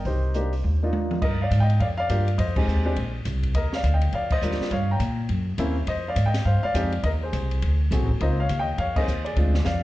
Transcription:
Already playing: A#4 D#5
0.05 C2 D#4 G4 C5, kick, open hi-hat
0.34 A#3 D4 D#4 G4, closed hi-hat
0.53 open hi-hat
0.64 D#2, high tom
0.83 A#3 D4 D#4 F4
0.93 high tom
1.11 mid tom
1.22 G2 A#4 D#5, kick, crash
1.42 D5 F5
1.51 G#2, kick, hi-hat pedal, ride
1.60 D#5 G5
1.70 ride
1.80 F2 D5 F5, kick, ride
1.98 D5 F5
2.09 G2 A#3 D4 F4 G4, kick, hi-hat pedal, ride
2.28 ride
2.38 F2 C5 D#5, kick, ride
2.56 G#3 C4 D#4 G4 G#4 C5, kick, crash
2.67 D#2, hi-hat pedal
2.85 G#3 C4 D4 G4
2.96 A#1, kick, ride
3.25 C2, kick, hi-hat pedal, ride
3.43 kick, ride
3.54 D#2 A#4 D#5, kick, ride
3.73 D5 F5, snare
3.83 D2, kick, hi-hat pedal, ride
3.94 D#5 G5
4.01 ride
4.13 F2 D5 F5, kick, ride
4.30 C5 D#5, kick, crash
4.42 D#2 G3 A#3 D4 F4, hi-hat pedal
4.51 snare
4.60 muted upright bass stroke, snare
4.71 G2 C#5 F5, kick, ride
4.91 G5 A#5
5.00 A#2, kick, hi-hat pedal, ride
5.29 F#2, kick, ride
5.58 D#2 A#3 C4 C#4 E4, kick, hi-hat pedal, ride
5.87 F2 C5 D#5, kick, ride
6.08 D5 F5
6.16 G#2, kick, hi-hat pedal, ride
6.26 D#5 G5
6.34 snare, ride
6.45 G2 C5 F5, kick
6.63 D5 F5, muted upright bass stroke
6.74 F2 G#3 C4 D#4 G4, kick, hi-hat pedal, ride
6.92 ride
7.03 D#2 A#4 D#5, kick, ride
7.23 G#4 C5
7.33 C2, kick, hi-hat pedal, ride
7.51 ride
7.62 D2, kick, ride
7.91 B1 A3 C4 F#4 G#4, kick, hi-hat pedal, ride
8.01 A1
8.09 F#1, kick
8.20 C#2 A#3 C4 D#4 F4 C5 D#5, kick, ride
8.40 C#5 F5
8.49 D#2, kick, hi-hat pedal, ride
8.59 D#5 G5
8.78 F2 C#5 F5, kick, ride
8.96 A#3 C4 D#4 G#4 C5 D#5, kick, crash
9.07 D#2, hi-hat pedal
9.25 G#4 D5, ride
9.36 D2 G#3 C4 D4 F4, kick, ride
9.54 snare
9.65 F2 D5 F5, snare, hi-hat pedal

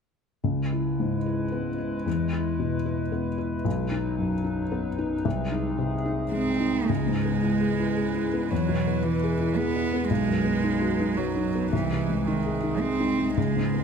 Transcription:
0.43 C#2 G#3 E4 B4
0.72 E4
1.00 G#2
1.26 E4
1.52 B3
1.78 E4
2.06 E2
2.33 E4
2.59 B2
2.86 E4
3.12 B3
3.38 E4
3.65 B1 F#3 D#4
3.91 D#4
4.18 F#2
4.44 D#4
4.72 B3
4.99 D#4
5.24 C2 G#3 G#4
5.52 D#4
5.78 C3
6.06 D#4
6.32 G#3 C4
6.60 D#4
6.88 C#2 G#3 E4 B4
7.07 G#2
7.26 B3
7.42 E4
7.60 G#4
7.80 E4
7.96 G#4
8.15 E4
8.34 B3
8.51 E2 F#3
8.69 B2
8.87 B3
9.04 E3 E4
9.23 G#4
9.40 E4
9.57 B3 G#4
9.76 E4
9.94 B3
10.09 B1 F#3 G#3 D#4
10.28 F#2
10.45 B3
10.64 D#4
10.82 F#4
11.01 D#4
11.18 F#3 F#4
11.37 D#4
11.55 B3
11.72 C2 E3 G#3 G#4
11.92 C3
12.10 G#3
12.27 D#3 D#4
12.46 G#4
12.63 D#4
12.81 C4 G#4
13.00 D#4
13.19 G#3
13.37 C#2 G#3 B3 E4
13.55 G#2
13.74 B3

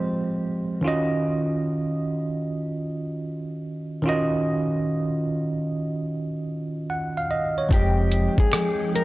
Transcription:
Already playing: F3 G#3 C4 F4 G4 C5 D#5
0.81 D#3 C#4 F4
0.86 F#4 D#5
4.02 D#3 C#4 F4
4.07 F#4 D#5
6.90 F#5
7.17 F5
7.31 D#5
7.58 C#5
7.69 F1 F3 G#3 C4 D#4 G5, kick, closed hi-hat
7.74 G#3 G4 D#5
8.12 closed hi-hat
8.38 G#4, kick, closed hi-hat
8.52 finger snap, cross-stick, closed hi-hat
8.95 A#4, closed hi-hat

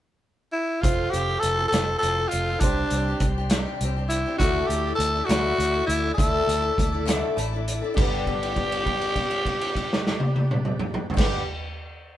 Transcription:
0.52 E4
0.81 F1 F3 C4 F4 A4 C5 F5 C6, kick, closed hi-hat
0.85 F4 A4
1.11 F1 F3 C4 G4, closed hi-hat
1.16 F4 A4
1.29 C4 F4 A4
1.39 F1 A4, closed hi-hat
1.58 C4 F4 A4
1.68 A4
1.72 F1 F3 C4 F4, snare, closed hi-hat
1.76 A4
1.98 A4
2.03 F1 F3 C4 F4 A4, closed hi-hat
2.19 C4 F4 A4
2.28 F4, closed hi-hat
2.33 F1
2.50 C4 F4 A4
2.59 C2 C3 D4 G4 C5 D5, kick, closed hi-hat
2.63 G3 C4 D4 G4
2.90 C2 G3 C4, closed hi-hat
2.95 D4 G4
3.08 C4 D4 G4
3.20 C2, kick, closed hi-hat
3.38 C4 D4 G4
3.50 C3, snare, closed hi-hat
3.54 G3 C4 D4 G4
3.81 C2 G3 C4 D4, closed hi-hat
3.86 G4
3.97 C4 D4 G4
4.09 E4, closed hi-hat
4.26 C4 D4 G4
4.36 D2 D4 E4 F#4 A4 E5 D6, kick, closed hi-hat
4.40 D3 A3 D4 E4 A4
4.67 D2 A3 G4, closed hi-hat
4.72 D4 E4 A4
4.87 D4 E4 A4
4.95 D2 A4
5.00 closed hi-hat
5.15 D4 E4 A4
5.25 F#4
5.29 D2 D3 A3 D4 E4 A4, snare, closed hi-hat
5.58 D2 A3 D4 E4 A4, closed hi-hat
5.73 D4 E4 A4
5.86 D2 E4, closed hi-hat
6.04 D4 E4 A4
6.14 D2 A4, kick
6.18 D3 A3 D4 E4 A4, closed hi-hat
6.47 D2 A3 D4 E4 A4, closed hi-hat
6.62 D4 E4 A4
6.78 D2, kick, closed hi-hat
6.92 D4 E4 A4
7.06 D3 A3 D4 E4 A4, snare, closed hi-hat
7.36 A1 A3 D4 E4 A4 A5, closed hi-hat
7.53 D4 E4 A4
7.68 closed hi-hat
7.82 D4 E4 A4
7.94 G1 G2 D3 D4 G4, kick, crash
7.98 G3 B3 G4 B4 D5
8.03 D4 G4
8.27 kick, crash
8.43 crash
8.56 kick, crash
8.72 crash
8.86 kick, crash
9.01 crash
9.16 kick, crash
9.31 crash
9.45 kick, crash
9.61 crash
9.75 kick, crash
9.93 snare
10.07 snare
10.20 high tom
10.36 high tom
10.51 mid tom
10.65 mid tom
10.79 mid tom
10.94 mid tom
11.10 G2 D4, floor tom
11.17 G1 D3 G3 B3 G4 B4 D5, kick, snare, crash
11.23 D4 G4

